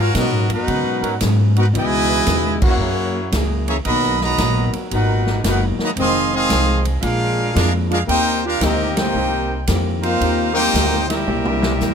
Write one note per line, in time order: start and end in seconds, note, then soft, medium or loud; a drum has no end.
0.00 0.13 G#2 medium
0.00 0.16 C#4 medium
0.00 0.14 F4 medium
0.00 0.16 F#4 loud
0.00 0.16 A#4 medium
0.00 0.16 F5 loud
0.14 0.53 G#2 medium
0.14 0.32 B2 loud
0.14 0.47 F#3 medium
0.14 0.53 F#3 medium
0.14 0.47 B3 medium
0.14 0.49 B3 medium
0.14 0.47 D#4 medium
0.14 0.49 A#4 medium
0.14 0.49 D#5 loud
0.14 kick soft
0.14 snare medium
0.14 hi-hat pedal medium
0.14 ride medium
0.18 0.54 B3 medium
0.18 0.54 C#4 medium
0.18 0.50 F#4 medium
0.32 0.49 G#2 medium
0.49 0.66 F#2 medium
0.49 1.18 B3 medium
0.49 1.18 D#4 loud
0.49 1.18 F#4 medium
0.49 1.18 B4 medium
0.49 ride medium
0.53 1.19 D#4 medium
0.53 1.19 A#4 medium
0.53 1.19 F#5 loud
0.68 1.05 G#2 medium
0.68 0.84 C#3 medium
0.68 1.06 F#3 medium
0.68 1.06 B3 medium
0.68 1.06 C#4 medium
0.68 kick soft
0.68 ride medium
0.84 1.01 B2 medium
1.02 1.19 G#2 medium
1.02 1.15 F#3 loud
1.02 1.15 B3 medium
1.02 1.15 C#4 medium
1.02 1.15 A#4 loud
1.02 ride medium
1.20 1.72 G#2 loud
1.20 1.59 G#2 medium
1.20 1.59 F#3 medium
1.20 1.59 B3 medium
1.20 1.60 C#4 medium
1.20 kick soft
1.20 snare medium
1.20 hi-hat pedal medium
1.20 ride medium
1.56 1.65 B3 medium
1.56 1.65 D#4 medium
1.56 1.67 D#4 medium
1.56 1.65 F#4 medium
1.56 1.67 A#4 medium
1.56 1.67 B4 medium
1.56 1.66 F#5 medium
1.56 ride medium
1.73 2.25 C#2 loud
1.73 2.58 B2 loud
1.73 2.11 C#3 medium
1.73 2.58 E3 loud
1.73 2.12 E3 medium
1.73 2.58 G#3 loud
1.73 2.12 B3 medium
1.73 kick soft
1.73 ride medium
1.77 2.13 D#4 medium
1.77 2.60 E4 loud
1.77 2.60 B4 loud
1.77 2.60 D#5 loud
1.77 2.60 G#5 loud
2.09 2.21 E3 loud
2.09 2.21 C#4 medium
2.09 2.21 D#4 medium
2.09 2.21 B4 loud
2.26 2.77 D#2 medium
2.26 2.64 C#3 medium
2.26 2.65 E3 medium
2.26 2.65 B3 medium
2.26 2.65 D#4 medium
2.26 kick soft
2.26 snare medium
2.26 hi-hat pedal medium
2.26 ride medium
2.62 2.75 F#3 loud
2.62 2.74 A#3 loud
2.62 3.34 A#3 medium
2.62 3.33 C#4 medium
2.62 2.74 E4 loud
2.62 2.75 F#4 loud
2.62 3.34 F#4 medium
2.62 kick loud
2.62 crash loud
2.67 3.35 E4 medium
2.67 3.35 A#4 medium
2.67 3.35 C#5 medium
2.67 3.35 F#5 medium
2.78 3.30 F#2 medium
2.78 3.17 F#3 soft
2.82 3.18 A#3 medium
2.82 3.18 E4 medium
2.82 3.19 G#4 medium
3.32 3.84 C#2 loud
3.32 3.71 F#3 medium
3.32 3.71 A#3 medium
3.32 3.71 E4 medium
3.32 kick soft
3.32 snare medium
3.32 hi-hat pedal medium
3.32 ride medium
3.37 3.72 G#4 medium
3.68 3.76 C#3 medium
3.68 3.76 E3 medium
3.68 3.76 A#3 medium
3.68 3.77 G#4 medium
3.68 3.76 C#5 medium
3.68 3.77 E5 medium
3.68 3.77 A#5 medium
3.68 ride medium
3.85 4.37 B1 medium
3.85 4.24 B2 medium
3.85 4.19 D#3 medium
3.85 4.19 F#3 loud
3.85 4.18 B3 loud
3.85 4.19 F#4 loud
3.85 4.19 A#4 loud
3.85 4.19 D#5 loud
3.85 4.20 B5 loud
3.85 kick soft
3.85 ride medium
3.89 4.24 F#3 medium
3.89 4.25 A#3 medium
3.89 4.25 D#4 medium
4.03 snare soft
4.21 4.71 D#3 medium
4.21 4.71 F#3 medium
4.21 4.71 B3 medium
4.21 4.71 F#4 loud
4.21 4.71 D#5 loud
4.21 4.71 A#5 medium
4.21 4.71 B5 loud
4.21 snare medium
4.37 4.71 A#1 loud
4.37 4.76 B2 medium
4.37 5.20 F#3 loud
4.37 4.77 F#3 medium
4.37 4.77 A#3 medium
4.37 5.19 B3 medium
4.37 5.19 D#4 medium
4.37 5.19 A#4 loud
4.37 kick soft
4.37 snare medium
4.37 hi-hat pedal medium
4.37 ride medium
4.41 4.77 D#4 medium
4.72 muted upright bass stroke soft
4.72 ride medium
4.91 5.43 G#1 medium
4.91 5.41 A#2 medium
4.91 5.29 B2 soft
4.91 5.29 F#3 medium
4.91 5.30 A#3 soft
4.91 5.41 D#4 medium
4.91 5.42 D#4 medium
4.91 5.30 D#4 medium
4.91 5.41 F#4 medium
4.91 5.42 A#4 medium
4.91 5.42 B4 medium
4.91 5.43 F#5 medium
4.91 kick soft
4.91 ride medium
5.27 snare medium
5.44 5.77 F#1 medium
5.44 5.81 B2 medium
5.44 5.82 F#3 medium
5.44 5.61 A#3 medium
5.44 5.82 A#3 medium
5.44 5.61 D#4 medium
5.44 5.83 D#4 medium
5.44 5.63 D#4 medium
5.44 5.61 F#4 medium
5.44 5.63 A#4 medium
5.44 5.63 B4 medium
5.44 5.63 F#5 medium
5.44 kick soft
5.44 snare medium
5.44 hi-hat pedal medium
5.44 ride medium
5.78 5.88 D#3 medium
5.78 5.89 F#3 medium
5.78 5.88 A#3 medium
5.78 muted upright bass stroke soft
5.78 snare medium
5.84 5.91 F#4 medium
5.84 5.91 B4 medium
5.84 5.92 D#5 medium
5.84 5.91 A#5 loud
5.96 6.48 F1 medium
5.96 6.35 F2 medium
5.96 6.31 D#3 loud
5.96 6.35 D#3 medium
5.96 6.31 G#3 medium
5.96 6.36 G#3 medium
5.96 6.31 C4 loud
5.96 6.32 D#5 loud
5.96 6.32 F5 loud
5.96 kick soft
5.96 ride medium
6.00 6.36 C4 medium
6.00 6.32 G#4 loud
6.00 6.32 C6 loud
6.34 6.83 D#3 medium
6.34 6.83 G#3 medium
6.34 6.83 C4 medium
6.34 6.84 G#4 loud
6.34 6.84 D#5 loud
6.34 6.84 F5 loud
6.34 6.84 C6 loud
6.50 7.02 C2 loud
6.50 6.87 F2 medium
6.50 6.88 D#3 medium
6.50 7.04 F3 medium
6.50 6.88 G#3 medium
6.50 7.04 C4 medium
6.50 6.88 C4 medium
6.50 7.03 D#4 medium
6.50 7.04 G#4 loud
6.50 kick soft
6.50 snare medium
6.50 hi-hat pedal medium
6.50 ride medium
6.85 ride medium
7.00 7.54 A#1 medium
7.00 7.40 A#2 soft
7.00 7.40 F3 medium
7.00 7.52 G#3 medium
7.00 7.40 G#3 medium
7.00 7.52 D4 medium
7.00 7.56 D4 medium
7.00 7.52 F4 medium
7.00 7.56 G#4 medium
7.00 7.56 A#4 medium
7.00 7.04 E5 medium
7.00 7.56 F5 loud
7.00 kick soft
7.00 ride medium
7.05 7.41 D4 medium
7.53 8.07 F2 loud
7.53 7.93 A#2 medium
7.53 7.93 F3 medium
7.53 7.69 G#3 medium
7.53 7.93 G#3 medium
7.53 7.69 D4 medium
7.53 7.73 D4 medium
7.53 7.94 D4 medium
7.53 7.70 F4 medium
7.53 7.73 G#4 medium
7.53 7.73 A#4 medium
7.53 7.73 F5 loud
7.53 kick soft
7.53 snare medium
7.53 hi-hat pedal medium
7.53 ride medium
7.89 7.98 G#3 medium
7.89 7.98 D4 medium
7.89 8.00 D4 medium
7.89 7.98 F4 medium
7.89 8.00 G#4 medium
7.89 8.00 A#4 medium
7.89 8.00 F5 medium
7.89 ride medium
8.07 8.60 D#2 medium
8.07 8.46 D#3 medium
8.07 8.41 A#3 loud
8.07 8.47 A#3 medium
8.07 8.41 C4 loud
8.07 8.42 D#4 loud
8.07 8.41 G4 loud
8.07 8.42 A#4 loud
8.07 8.43 C5 loud
8.07 8.42 G5 loud
8.07 kick soft
8.07 ride medium
8.11 8.47 C4 medium
8.11 8.48 G4 medium
8.44 8.63 D4 loud
8.44 8.62 F4 medium
8.44 8.63 G4 loud
8.44 8.62 A#4 loud
8.44 8.64 F5 loud
8.60 9.13 D2 medium
8.60 8.99 D#3 medium
8.60 8.95 A#3 medium
8.60 8.99 A#3 medium
8.60 9.44 A#3 medium
8.60 8.95 C4 medium
8.60 9.43 C4 medium
8.60 8.99 C4 medium
8.60 8.98 C4 medium
8.60 8.96 D#4 medium
8.60 9.44 D#4 loud
8.60 9.43 G4 loud
8.60 9.00 G4 medium
8.60 8.98 A#4 medium
8.60 8.98 D#5 loud
8.60 kick soft
8.60 snare medium
8.60 hi-hat pedal medium
8.60 ride medium
8.64 8.98 G4 medium
8.96 9.64 A#3 medium
8.96 9.63 C4 medium
8.96 9.65 D#4 medium
8.96 9.63 G4 medium
8.96 9.65 A#4 medium
8.96 9.65 C5 medium
8.96 9.65 G5 loud
8.96 snare loud
8.96 ride medium
9.14 9.66 C2 medium
9.14 9.52 D#3 medium
9.14 9.52 A#3 medium
9.14 9.53 C4 medium
9.14 9.53 G4 medium
9.67 10.19 F2 medium
9.67 10.05 D#3 medium
9.67 10.05 A#3 medium
9.67 10.06 C4 medium
9.67 10.06 G4 medium
9.67 kick soft
9.67 snare medium
9.67 hi-hat pedal medium
9.67 ride medium
10.02 10.52 A#3 medium
10.02 10.52 C4 loud
10.02 10.52 D#4 medium
10.02 10.52 F4 medium
10.02 10.52 A#4 medium
10.02 10.52 C5 medium
10.02 10.53 F5 loud
10.02 ride medium
10.21 10.72 D#2 medium
10.21 10.58 D#3 medium
10.21 10.59 A#3 medium
10.21 10.59 C4 medium
10.21 10.60 G4 medium
10.21 kick soft
10.21 ride medium
10.54 11.04 A#3 loud
10.54 11.24 A#3 medium
10.54 11.05 C4 medium
10.54 11.23 C4 medium
10.54 11.05 D#4 loud
10.54 11.23 D#4 loud
10.54 11.05 G4 medium
10.54 11.23 G4 loud
10.54 11.05 A#4 loud
10.54 11.05 C5 loud
10.54 11.05 G5 loud
10.54 snare soft
10.74 11.25 D2 medium
10.74 11.12 D#3 medium
10.74 11.12 A#3 medium
10.74 11.12 C4 medium
10.74 kick soft
10.74 snare medium
10.74 hi-hat pedal medium
10.74 ride medium
10.78 11.13 G4 medium
10.93 snare soft
11.07 11.94 G3 medium
11.07 11.94 A#3 medium
11.07 11.94 C4 medium
11.07 11.94 E4 medium
11.07 11.94 G4 medium
11.07 11.94 A#4 medium
11.07 11.94 E5 medium
11.07 snare medium
11.07 ride medium
11.27 11.78 C2 medium
11.27 11.64 C3 medium
11.27 11.65 G3 medium
11.27 11.66 A#3 soft
11.27 11.66 E4 medium
11.27 mid tom medium
11.45 mid tom medium
11.61 11.74 E3 loud
11.61 11.74 A#3 loud
11.61 11.74 C4 medium
11.61 11.74 G4 loud
11.61 snare loud
11.80 11.94 E2 medium
11.80 11.94 C3 medium
11.80 11.94 G3 medium
11.80 11.94 A#3 medium
11.80 11.94 E4 medium
11.80 snare medium
11.80 hi-hat pedal medium